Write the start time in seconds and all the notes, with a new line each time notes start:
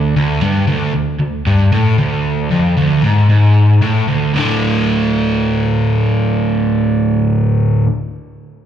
Already playing: D2
0.16 D2
0.43 G2
0.68 D2
0.95 D2
1.20 D2
1.47 G2
1.72 A2
1.99 D2
2.51 F2
2.77 D2
3.04 G#2
3.30 G#2
3.82 A2
4.08 D2
4.34 D2 A2 D3